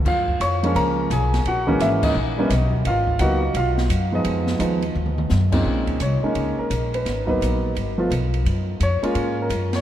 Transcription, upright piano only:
X:1
M:4/4
L:1/8
Q:"Swing" 1/4=171
K:Bbphr
V:1 name="Upright piano"
[Ff]2 [dd']2 [Bb]2 [Aa]2 | [Gg]2 [_F_f] [Ee]4 z | [Ff]2 [Gg]2 [Ff]2 z [Ee]- | [Ee]2 z6 |
[K:Bbm] z2 d3 B2 _c- | _c [Bc] z6 | z2 d3 B2 d |]
V:2 name="Upright piano"
z3 [F,A,B,D]3 z2 | z [_F,A,B,D]3 z [=G,B,CD] z2 | z2 [G,B,CE] z4 [F,A,CE]- | [F,A,CE]2 [F,A,CE] z4 [B,,A,=C^CE]- |
[K:Bbm] [B,,A,C^CE]2 z [A,B,DE]3 z2 | z [G,B,_CE]3 z [F,=A,=B,F] z2 | z3 [A,B,DF]3 z2 |]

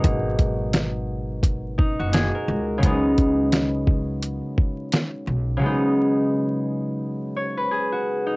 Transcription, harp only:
X:1
M:4/4
L:1/16
Q:"Swing 16ths" 1/4=86
K:C#dor
V:1 name="Harp"
z8 z2 D F G A2 z | z16 | z8 z2 c B G F2 D |]
V:2 name="Harp" clef=bass
[B,,F,G,A,D]8 z8 | [C,F,G,B,D]16 | [C,F,G,B,D]16 |]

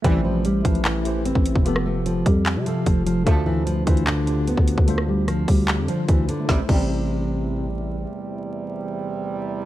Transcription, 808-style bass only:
X:1
M:4/4
L:1/16
Q:1/4=149
K:Am
V:1 name="808-style bass" clef=bass
A,,,6 A,,,6- A,,, A,,,2 F,,,- | F,,,6 F,,3 C,3 F,,,4 | D,,6 D,,6- D,, D,,2 D,,- | D,,6 D,,3 F,, z2 D,,2 z2 |
A,,, z A,,,12- A,,,2 | z16 |]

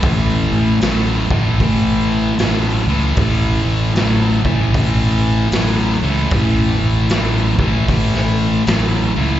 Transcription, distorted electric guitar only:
X:1
M:4/4
L:1/8
Q:"Swing" 1/4=76
K:A
V:1 name="Distorted electric guitar" clef=bass
[A,,E,]2 [A,,F,] [A,,E,] [A,,E,]2 [A,,F,] [A,,E,] | [A,,E,]2 [A,,F,] [A,,E,] [A,,E,]2 [A,,F,] [A,,E,] | [A,,E,]2 [A,,F,] [A,,E,] [A,,E,]2 [A,,F,] [A,,E,] |]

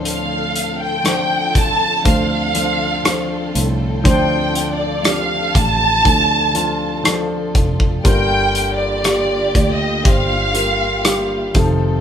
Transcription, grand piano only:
X:1
M:4/4
L:1/8
Q:1/4=60
K:Dphr
V:1 name="Grand piano"
[F,Dc]2 [F,Dc]2 [F,Dc] [F,Dc] [F,Dc]2 | [F,Dc]2 [F,DG]2 [F,DA] [F,DF] [F,DA]2 | [G,FB]2 [G,FG]2 [G,Fc] [G,FB] [G,FG] [F,EA] |]
V:2 name="Grand piano" clef=bass
A,,2 z4 z A,,- | A,,2 z6 | [G,,D,]3 z4 C, |]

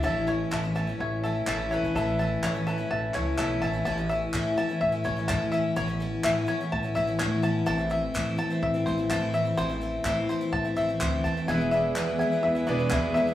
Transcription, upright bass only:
X:1
M:4/4
L:1/16
Q:1/4=126
K:Alyd
V:1 name="Upright bass" clef=bass
A,,,4 A,,,4 A,,,4 A,,,3 A,,, | A,,,4 A,,,4 A,,,2 C,,2 B,,,2 A,,,2 | A,,,4 A,,2 z2 A,,2 A,,,2 A,,4 | A,,,4 A,,2 z2 A,,2 A,,,2 A,,4 |
A,,,4 A,,2 z2 A,,2 A,,,2 A,,4 | A,,,4 A,,2 z2 A,,2 A,,,2 =D,,2 E,,2 | E,,,4 E,,2 z2 E,,2 E,,,2 E,,4 |]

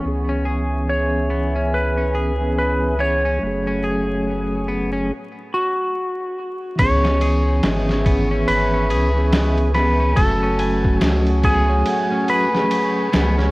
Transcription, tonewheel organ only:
X:1
M:4/4
L:1/16
Q:"Swing 16ths" 1/4=71
K:C#m
V:1 name="Tonewheel organ"
[E,B,CG]8- [E,B,CG]3 [E,B,CG]3 [E,B,CG]2 | [F,A,CG]8 z8 | [E,B,CG]8- [E,B,CG]3 [E,B,CG]3 [E,B,CG]2 | [F,A,CF]8- [F,A,CF]3 [F,A,CG]3 [F,A,CG]2 |]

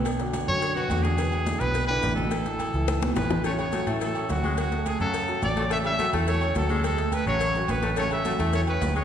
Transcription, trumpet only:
X:1
M:4/4
L:1/8
Q:1/4=212
K:A
V:1 name="Trumpet"
z3 c2 F2 G- | G3 B2 B2 A- | A6 B2 | c c2 z A2 F2 |
F2 G A3 d2 | e e2 z c2 A2 | A2 B c3 B2 | c e3 c B2 c |]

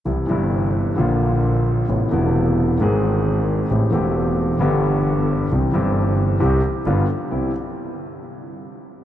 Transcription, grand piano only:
X:1
M:4/4
L:1/8
Q:1/4=133
K:C
V:1 name="Grand piano" clef=bass
[C,,C,E,G,E] [G,,,G,,C,E,G,E]3 [_B,,,_B,,D,F,_B,F]4 | [A,,,A,,C,A,B,E] [E,,,E,,C,A,B,E]3 [_A,,,_A,,_E,_A,C_A]4 | [A,,,A,,E,A,CG] [E,,,E,,E,A,CG]3 [G,,,G,,D,G,B,G]4 | [C,,C,E,G,CG] [G,,,G,,E,G,CG]3 [C,,C,E,G,CG] z [G,,,G,,D,G,B,F] z |
[C,,G,CE] z6 z |]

